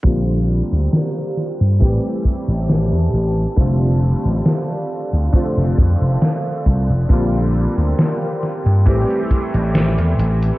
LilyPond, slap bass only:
\new Staff \with { instrumentName = "Slap bass" } { \clef bass \time 4/4 \key bes \lydian \tempo 4 = 68 bes,,8 r16 d,16 r8. g,16 a,,16 r8 a,,8 e,16 a,,16 r16 | f,,8 r16 a,,16 r8. d,16 r16 f,,16 f,16 f,,16 r8 c,16 f,,16 | bes,,8 r16 d,16 r8. g,16 a,,16 r8 a,,8 e,16 a,,16 r16 | }